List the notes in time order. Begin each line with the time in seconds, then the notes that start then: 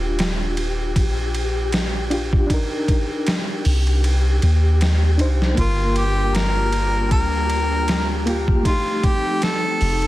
Already playing: D#1 D4 F4 G4
0.19 snare, ride
0.57 ride
0.96 A#1, kick, ride
1.35 ride
1.73 snare, ride
2.10 D4 F4 G4, ride
2.33 kick
2.47 D4 D#4, kick, ride
2.54 A#4
2.88 kick, ride
3.27 snare, ride
3.65 C2, open hi-hat
3.87 ride
4.04 ride
4.42 D#2, ride
4.81 snare, ride
5.18 C2 D4 D#4 C5, ride
5.42 snare
5.54 G1 G3 A#3 D4 F4, kick, ride
5.59 F4 A#4
5.96 G4, ride
6.35 A#4, snare, ride
6.73 ride
7.11 D2 A#4, kick, ride
7.50 ride
7.88 snare, ride
8.26 A#3 F4 G4, ride
8.48 kick
8.63 F3 A3 C4 D#4 F4 A4, kick, ride
8.70 G4
9.04 G4, kick, ride
9.42 A4, snare, ride
9.81 F1, open hi-hat
10.02 ride